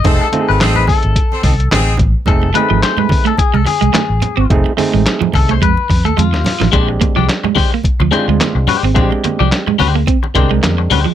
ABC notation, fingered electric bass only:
X:1
M:4/4
L:1/16
Q:"Swing 16ths" 1/4=108
K:Bb
V:1 name="Fingered electric bass" clef=bass
F,,, z2 ^G,,, A,,,2 z G,,, z2 C,,2 A,,,2 A,,, z | F,,,2 z ^G,,, z4 z C,, z C,, z A,,, z G,,, | F,,, z2 A,,, z2 C,,2 F,, z F,, E,, F,, E,, z A,,, | B,,,2 z C,, z4 z D,, z D,, z C,, z _A,,, |
B,,, z2 C,, z2 D,,2 z2 C,,2 F,,2 D,, z |]